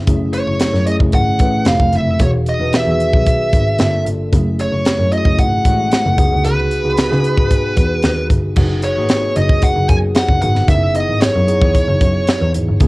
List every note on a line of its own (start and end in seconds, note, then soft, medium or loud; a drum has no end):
0.06 0.29 F#1 loud
0.06 0.64 A3 medium
0.06 0.64 C#4 medium
0.06 0.64 E4 medium
0.06 0.64 G#4 medium
0.06 kick loud
0.06 closed hi-hat medium
0.33 0.84 C#5 medium
0.33 closed hi-hat medium
0.47 0.58 F#1 medium
0.60 0.71 F#2 soft
0.60 snare loud
0.60 closed hi-hat medium
0.73 0.84 F#2 loud
0.73 snare soft
0.87 1.25 A3 medium
0.87 1.25 C#4 medium
0.87 1.25 E4 medium
0.87 1.26 G#4 medium
0.87 0.94 D#5 medium
0.87 closed hi-hat medium
1.00 1.11 F#1 medium
1.00 kick medium
1.12 1.34 G#1 medium
1.12 1.68 F#5 medium
1.12 kick medium
1.12 closed hi-hat medium
1.39 1.61 A1 medium
1.39 1.65 A3 medium
1.39 1.67 C#4 medium
1.39 1.66 E4 medium
1.39 1.67 B4 medium
1.39 kick medium
1.39 closed hi-hat medium
1.65 1.77 F1 medium
1.65 2.09 A3 medium
1.65 2.09 C4 medium
1.65 2.09 E4 medium
1.65 2.09 G4 medium
1.65 1.95 F5 loud
1.65 snare loud
1.65 closed hi-hat medium
1.80 1.90 F1 medium
1.80 kick medium
1.93 2.04 F#1 medium
1.93 2.22 E5 loud
1.93 closed hi-hat medium
2.07 2.17 F1 medium
2.19 2.41 E1 loud
2.19 2.48 B3 medium
2.19 2.48 D#4 medium
2.19 2.48 F#4 medium
2.19 2.48 G#4 medium
2.19 2.29 C#5 medium
2.19 kick loud
2.19 closed hi-hat medium
2.46 2.73 D#5 medium
2.46 closed hi-hat medium
2.59 2.70 E1 medium
2.59 2.79 B3 medium
2.59 2.79 D#4 medium
2.59 2.79 F#4 medium
2.59 2.79 B4 medium
2.72 2.82 E2 soft
2.72 4.03 E5 medium
2.72 snare loud
2.72 closed hi-hat medium
2.86 2.96 E2 medium
2.86 3.62 D#3 medium
2.86 3.62 B3 medium
2.86 3.62 F#4 medium
2.86 3.63 G#4 medium
3.00 closed hi-hat medium
3.13 3.34 B1 medium
3.13 kick medium
3.26 kick medium
3.26 closed hi-hat medium
3.53 3.74 G#1 medium
3.53 kick medium
3.53 closed hi-hat medium
3.79 4.00 G1 loud
3.79 4.21 A#3 medium
3.79 4.21 D4 medium
3.79 4.21 F4 medium
3.79 4.22 A4 loud
3.79 snare loud
3.79 closed hi-hat medium
4.05 4.26 G1 medium
4.05 closed hi-hat medium
4.32 4.53 F#1 loud
4.32 4.89 A3 medium
4.32 4.89 C#4 medium
4.32 4.89 E4 medium
4.32 4.89 G#4 medium
4.32 kick medium
4.32 closed hi-hat medium
4.59 5.13 C#5 medium
4.59 closed hi-hat medium
4.71 4.82 F#1 medium
4.85 4.95 F#2 soft
4.85 snare loud
4.85 closed hi-hat medium
4.99 5.09 F#2 medium
5.11 5.49 A3 medium
5.11 5.49 C#4 medium
5.11 5.50 E4 medium
5.11 5.18 F#4 medium
5.11 5.37 D#5 medium
5.11 closed hi-hat medium
5.19 5.53 G#4 medium
5.25 5.36 F#1 medium
5.25 kick medium
5.39 5.60 G#1 medium
5.39 6.48 F#5 loud
5.39 kick medium
5.39 closed hi-hat medium
5.64 5.86 A1 medium
5.64 5.71 G#3 medium
5.64 6.18 C#4 medium
5.64 6.18 E4 medium
5.64 6.18 F#4 medium
5.64 kick medium
5.64 closed hi-hat medium
5.71 6.21 A3 medium
5.92 snare loud
5.92 closed hi-hat medium
6.06 6.16 F#1 medium
6.17 6.29 C#2 medium
6.17 6.70 B3 medium
6.17 6.70 D#4 medium
6.17 6.24 F4 medium
6.17 6.71 G#4 medium
6.17 kick loud
6.17 closed hi-hat medium
6.24 6.74 F#4 medium
6.32 6.42 D2 medium
6.45 6.65 C#2 medium
6.45 8.26 B4 medium
6.45 closed hi-hat medium
6.71 closed hi-hat medium
6.84 6.95 C#2 medium
6.84 7.03 B3 medium
6.84 7.03 D#4 medium
6.84 7.03 F#4 medium
6.84 7.03 G#4 medium
6.97 7.08 C#3 soft
6.97 snare loud
6.97 closed hi-hat medium
7.10 7.22 C#3 loud
7.10 7.86 B3 medium
7.10 7.86 D#4 medium
7.10 7.86 F#4 medium
7.10 7.86 G#4 medium
7.10 snare soft
7.24 closed hi-hat medium
7.38 7.59 G#2 medium
7.38 kick medium
7.51 kick loud
7.51 closed hi-hat medium
7.77 7.98 E2 medium
7.77 kick medium
7.77 closed hi-hat medium
8.02 8.29 D#2 medium
8.02 snare loud
8.02 closed hi-hat medium
8.30 8.51 G1 medium
8.30 kick medium
8.30 closed hi-hat medium
8.56 8.88 F#1 loud
8.56 8.85 B3 medium
8.56 8.85 D#4 medium
8.56 8.85 F#4 medium
8.56 8.86 G#4 medium
8.56 kick loud
8.56 crash medium
8.82 9.37 C#5 medium
8.82 closed hi-hat medium
8.96 9.07 G#1 medium
8.96 9.03 A#3 medium
8.96 9.72 D#4 medium
8.96 9.73 F#4 medium
8.96 9.73 G#4 medium
9.03 9.76 B3 medium
9.09 snare loud
9.09 closed hi-hat medium
9.36 9.57 F#1 loud
9.36 9.64 D#5 medium
9.36 closed hi-hat medium
9.49 kick medium
9.62 9.89 F#5 loud
9.62 kick medium
9.62 closed hi-hat medium
9.76 9.86 F#1 medium
9.89 10.10 F#2 medium
9.89 9.96 G#5 loud
9.89 kick medium
9.89 closed hi-hat medium
10.15 10.41 F#5 loud
10.15 snare loud
10.15 closed hi-hat medium
10.28 10.39 F#1 medium
10.28 kick medium
10.41 10.52 G#1 medium
10.41 10.61 B3 medium
10.41 10.61 D#4 medium
10.41 10.61 F#4 medium
10.41 10.61 G#4 medium
10.41 10.67 F#5 medium
10.41 closed hi-hat medium
10.55 10.65 G1 medium
10.55 snare soft
10.68 11.00 F#1 loud
10.68 10.87 B3 medium
10.68 10.87 D#4 medium
10.68 10.88 E4 medium
10.68 10.88 G#4 medium
10.68 10.95 E5 medium
10.68 kick loud
10.68 closed hi-hat medium
10.94 11.33 B3 medium
10.94 11.33 D#4 medium
10.94 11.33 E4 medium
10.94 11.33 G#4 medium
10.94 11.21 D#5 medium
10.94 closed hi-hat medium
11.09 11.19 G#1 medium
11.21 11.32 F#2 soft
11.21 12.50 C#5 medium
11.21 snare loud
11.21 closed hi-hat medium
11.35 11.45 F#2 loud
11.47 12.24 B3 medium
11.47 12.24 D#4 medium
11.47 12.24 E4 medium
11.47 12.24 G#4 medium
11.47 closed hi-hat medium
11.61 11.72 E2 medium
11.61 kick loud
11.75 kick medium
11.75 closed hi-hat medium
11.88 11.98 F#1 medium
12.01 12.22 F#2 medium
12.01 kick medium
12.01 closed hi-hat medium
12.27 snare loud
12.27 closed hi-hat medium
12.41 12.52 E2 loud
12.54 12.65 G#1 medium
12.54 closed hi-hat medium
12.68 12.79 G1 medium
12.80 12.88 F#1 loud
12.80 12.88 A3 medium
12.80 12.88 C#4 medium
12.80 12.88 E4 medium
12.80 12.88 G#4 loud
12.80 kick loud
12.80 closed hi-hat medium